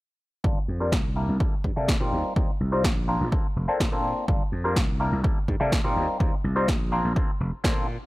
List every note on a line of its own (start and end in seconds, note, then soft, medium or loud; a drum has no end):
0.44 0.54 G1 medium
0.44 0.58 G3 medium
0.44 0.59 A#3 medium
0.44 0.59 D4 medium
0.44 0.59 F4 medium
0.44 0.59 A4 medium
0.44 kick loud
0.68 0.94 F2 medium
0.80 0.94 G3 medium
0.80 0.94 A#3 medium
0.80 0.95 D4 medium
0.80 0.95 F4 medium
0.80 0.95 A#4 loud
0.92 1.24 C2 medium
0.92 kick loud
0.92 snare loud
1.16 1.37 G3 medium
1.16 1.37 A#3 medium
1.16 1.37 D4 medium
1.16 1.37 E4 medium
1.16 1.37 A#4 medium
1.29 1.38 C2 medium
1.40 1.55 A#3 medium
1.40 1.55 D4 medium
1.40 1.55 E4 medium
1.40 1.55 A4 medium
1.40 kick loud
1.64 1.74 G2 medium
1.64 kick medium
1.76 1.95 C3 medium
1.76 1.97 G3 medium
1.76 1.97 A#3 medium
1.76 1.97 D4 medium
1.76 1.97 E4 medium
1.76 1.97 A4 medium
1.88 kick loud
1.88 snare loud
2.00 2.10 A#2 medium
2.00 2.33 G3 medium
2.00 2.33 C4 medium
2.00 2.33 D#4 medium
2.00 2.34 F4 medium
2.00 2.34 A#4 loud
2.12 2.22 D#2 medium
2.36 2.46 D#2 medium
2.36 2.51 G3 medium
2.36 2.51 C4 medium
2.36 2.51 D#4 medium
2.36 2.51 F4 medium
2.36 2.51 A#4 medium
2.36 kick loud
2.60 2.84 C2 medium
2.72 2.86 G3 medium
2.72 2.86 C4 medium
2.72 2.86 D#4 medium
2.72 2.87 F4 medium
2.72 2.87 C5 loud
2.84 3.16 A#1 medium
2.84 kick loud
2.84 snare loud
3.08 3.29 A#3 medium
3.08 3.29 C4 medium
3.08 3.29 D4 medium
3.08 3.29 F4 medium
3.08 3.29 A#4 medium
3.21 3.30 A#1 medium
3.32 3.46 A#3 medium
3.32 3.47 C4 medium
3.32 3.47 D4 medium
3.32 3.47 F4 medium
3.32 3.47 A4 medium
3.32 kick loud
3.56 3.66 F1 medium
3.68 3.89 A#3 medium
3.68 3.89 C4 medium
3.68 3.89 D4 medium
3.68 3.89 F4 medium
3.68 3.89 A4 medium
3.68 muted slap bass stroke soft
3.80 4.12 A#2 medium
3.80 kick loud
3.80 snare loud
3.92 4.25 A#3 medium
3.92 4.25 C4 medium
3.92 4.26 D4 medium
3.92 4.26 F4 medium
3.92 4.26 A4 loud
4.28 4.38 G1 medium
4.28 4.43 G3 medium
4.28 4.43 A#3 medium
4.28 4.43 D4 medium
4.28 4.43 F4 medium
4.28 4.43 A4 medium
4.28 kick loud
4.52 4.78 F2 medium
4.64 4.78 G3 medium
4.64 4.78 A#3 medium
4.64 4.79 D4 medium
4.64 4.79 F4 medium
4.64 4.79 A#4 loud
4.76 5.08 C2 medium
4.76 kick loud
4.76 snare loud
5.00 5.21 G3 medium
5.00 5.21 A#3 medium
5.00 5.21 D4 medium
5.00 5.21 E4 medium
5.00 5.21 A#4 medium
5.12 5.22 C2 medium
5.24 5.38 G3 medium
5.24 5.38 A#3 medium
5.24 5.38 D4 medium
5.24 5.39 E4 medium
5.24 5.39 A4 medium
5.24 kick loud
5.48 5.58 G2 medium
5.48 kick medium
5.60 5.79 C3 medium
5.60 5.81 G3 medium
5.60 5.81 A#3 medium
5.60 5.81 D4 medium
5.60 5.81 E4 medium
5.60 5.81 A4 medium
5.72 kick loud
5.72 snare loud
5.84 5.94 A#2 medium
5.84 6.17 G3 medium
5.84 6.17 C4 medium
5.84 6.17 D#4 medium
5.84 6.18 F4 medium
5.84 6.18 A#4 loud
5.96 6.06 D#2 medium
6.20 6.30 D#2 medium
6.20 6.34 G3 medium
6.20 6.34 C4 medium
6.20 6.34 D#4 medium
6.20 6.35 F4 medium
6.20 6.35 A#4 medium
6.20 kick loud
6.44 6.68 C2 medium
6.56 6.70 G3 medium
6.56 6.70 C4 medium
6.56 6.70 D#4 medium
6.56 6.70 F4 medium
6.56 6.71 C5 loud
6.68 7.00 A#1 medium
6.68 kick loud
6.68 snare loud
6.92 7.13 A#3 medium
6.92 7.13 C4 medium
6.92 7.13 D4 medium
6.92 7.13 F4 medium
6.92 7.13 A#4 medium
7.05 7.14 A#1 medium
7.16 7.31 A#3 medium
7.16 7.31 C4 medium
7.16 7.31 D4 medium
7.16 7.31 F4 medium
7.16 7.31 A4 medium
7.16 kick loud
7.40 7.50 F1 medium
7.53 muted slap bass stroke soft
7.64 7.96 A#2 medium
7.64 7.87 A#3 medium
7.64 7.87 C4 medium
7.64 7.87 D4 medium
7.64 7.87 F4 medium
7.64 7.87 A4 loud
7.64 kick loud
7.64 snare loud